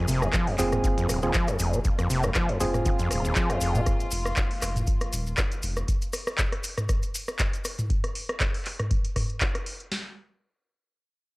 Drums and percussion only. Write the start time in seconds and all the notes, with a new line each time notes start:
0.08 open hi-hat, maracas
0.22 cross-stick, maracas
0.33 kick, cross-stick, clap, closed hi-hat, maracas
0.47 open hi-hat
0.58 clap, open hi-hat, maracas
0.72 cross-stick, closed hi-hat, mid tom, maracas
0.84 kick, closed hi-hat, maracas
0.98 closed hi-hat, maracas
1.09 cross-stick, open hi-hat, maracas
1.22 maracas
1.34 kick, clap, closed hi-hat, maracas
1.48 cross-stick, closed hi-hat, maracas
1.59 open hi-hat, maracas
1.73 closed hi-hat, maracas
1.85 kick, closed hi-hat, maracas
1.99 cross-stick, closed hi-hat, maracas
2.10 open hi-hat, maracas
2.23 cross-stick, maracas
2.35 kick, cross-stick, clap, closed hi-hat, maracas
2.49 closed hi-hat
2.60 open hi-hat, maracas
2.74 cross-stick, closed hi-hat, mid tom, maracas
2.86 kick, closed hi-hat, maracas
2.99 closed hi-hat, maracas
3.11 cross-stick, open hi-hat, maracas
3.25 maracas
3.35 kick, clap, closed hi-hat, maracas
3.50 cross-stick, closed hi-hat, maracas
3.61 open hi-hat, maracas
3.75 closed hi-hat, mid tom, maracas
3.86 kick, cross-stick, closed hi-hat, maracas
4.00 closed hi-hat, maracas
4.11 open hi-hat, maracas
4.26 cross-stick, maracas
4.36 kick, clap, closed hi-hat, maracas
4.51 open hi-hat
4.62 cross-stick, clap, open hi-hat, maracas
4.76 closed hi-hat, mid tom, maracas
4.87 kick, closed hi-hat, maracas
5.01 cross-stick, closed hi-hat, maracas
5.13 open hi-hat, maracas
5.27 maracas
5.37 kick, cross-stick, clap, closed hi-hat, maracas
5.52 closed hi-hat, maracas
5.63 open hi-hat, maracas
5.77 cross-stick, closed hi-hat, maracas
5.88 kick, closed hi-hat, maracas
6.02 closed hi-hat, maracas
6.13 cross-stick, open hi-hat, maracas
6.27 cross-stick, maracas
6.38 kick, clap, closed hi-hat, maracas
6.52 cross-stick, closed hi-hat
6.64 open hi-hat, maracas
6.78 cross-stick, closed hi-hat, mid tom, maracas
6.89 kick, cross-stick, closed hi-hat, maracas
7.03 closed hi-hat, maracas
7.14 open hi-hat, maracas
7.28 cross-stick, maracas
7.39 kick, clap, closed hi-hat, maracas
7.53 closed hi-hat, maracas
7.65 cross-stick, open hi-hat, maracas
7.79 closed hi-hat, mid tom, maracas
7.90 kick, closed hi-hat
8.04 cross-stick, closed hi-hat
8.15 open hi-hat
8.29 cross-stick, closed hi-hat
8.40 kick, cross-stick, clap, closed hi-hat
8.54 open hi-hat
8.65 clap, open hi-hat
8.79 cross-stick, closed hi-hat, mid tom
8.91 kick, closed hi-hat
9.05 closed hi-hat
9.16 kick, cross-stick, mid tom, open hi-hat
9.30 closed hi-hat
9.41 kick, clap, closed hi-hat
9.55 cross-stick, closed hi-hat
9.66 open hi-hat
9.80 closed hi-hat
9.92 snare, open hi-hat